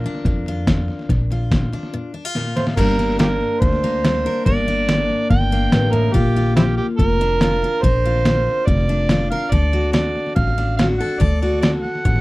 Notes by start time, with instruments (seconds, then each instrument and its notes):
Already playing: steel-string acoustic guitar F3 F4 A#4
0.04 steel-string acoustic guitar D4, snare
0.15 snare
0.25 upright bass F2, steel-string acoustic guitar A#2, kick, snare
0.46 steel-string acoustic guitar F4, snare
0.67 steel-string acoustic guitar F3, kick, snare, hi-hat pedal
0.88 snare
0.99 snare
1.09 upright bass A#1, steel-string acoustic guitar A#2, kick, snare
1.31 steel-string acoustic guitar F4, snare
1.51 steel-string acoustic guitar F3, kick, snare, hi-hat pedal
1.73 steel-string acoustic guitar D4, snare
1.83 snare
1.94 steel-string acoustic guitar A#2
2.14 steel-string acoustic guitar D4
2.25 steel-string acoustic guitar F4
2.35 steel-string acoustic guitar A#2, snare
2.56 steel-string acoustic guitar A2, harmonica C5, snare
2.67 snare
2.77 upright bass G1, steel-string acoustic guitar G2 G3 A#3 D4, harmonica A#4, kick, snare, crash
2.98 steel-string acoustic guitar D4, snare
3.09 snare
3.19 steel-string acoustic guitar G3, harmonica F4 G4 A#4, snare, hi-hat pedal
3.41 snare
3.60 upright bass D2, steel-string acoustic guitar D3, harmonica C5, kick, snare
3.73 snare
3.83 steel-string acoustic guitar A#3, snare
4.04 steel-string acoustic guitar G3 D4, snare, hi-hat pedal
4.25 steel-string acoustic guitar A#4, snare
4.45 upright bass G1, steel-string acoustic guitar G2 A#4, harmonica D5, kick, snare
4.57 snare
4.67 steel-string acoustic guitar D4, snare
4.89 steel-string acoustic guitar G3, snare, hi-hat pedal
5.09 snare
5.30 upright bass G1, steel-string acoustic guitar D3, harmonica G5, kick, snare
5.41 snare
5.51 steel-string acoustic guitar A#3, snare
5.72 upright bass A1, steel-string acoustic guitar G2, snare, hi-hat pedal
5.93 steel-string acoustic guitar A2, harmonica A#4, snare
6.14 upright bass A#1, steel-string acoustic guitar A#2 F4, harmonica G4, kick, snare
6.36 steel-string acoustic guitar F4, snare
6.46 snare
6.56 steel-string acoustic guitar F3, harmonica C4 E4 G4, snare, hi-hat pedal
6.77 harmonica G4, snare
6.98 upright bass F1, steel-string acoustic guitar A#2, harmonica A#4, kick, snare
7.10 snare
7.20 steel-string acoustic guitar D4, snare
7.41 steel-string acoustic guitar F3 F4, snare, hi-hat pedal
7.62 steel-string acoustic guitar F4, snare
7.82 upright bass A#1, steel-string acoustic guitar A#2 A#4, harmonica C5, kick, snare
8.05 steel-string acoustic guitar F4, snare
8.15 snare
8.25 steel-string acoustic guitar F3, snare, hi-hat pedal
8.47 snare
8.66 upright bass F1, steel-string acoustic guitar A#2, harmonica D5, kick, snare
8.78 snare
8.88 steel-string acoustic guitar D4, snare
9.09 steel-string acoustic guitar F3 F4, snare, hi-hat pedal
9.31 steel-string acoustic guitar A#4, harmonica F5, snare
9.51 upright bass D2, steel-string acoustic guitar D3 A4, harmonica D5, kick, snare
9.73 steel-string acoustic guitar F#4, snare
9.93 steel-string acoustic guitar F#3, harmonica D5, snare, hi-hat pedal
10.16 snare
10.26 snare
10.36 upright bass A1, steel-string acoustic guitar A2, harmonica F5, kick, snare
10.47 snare
10.58 steel-string acoustic guitar D4, snare
10.77 steel-string acoustic guitar F#3 F#4, harmonica F5, snare, hi-hat pedal
10.98 steel-string acoustic guitar A4, harmonica F#5, snare
11.20 upright bass D2, steel-string acoustic guitar D3 A4, harmonica D5, kick, snare
11.41 steel-string acoustic guitar F#4, harmonica D5, snare
11.61 steel-string acoustic guitar F#3, harmonica D5, snare, hi-hat pedal
11.82 harmonica F#5, snare
11.95 snare
12.05 upright bass A1, steel-string acoustic guitar A2, kick, snare
12.16 snare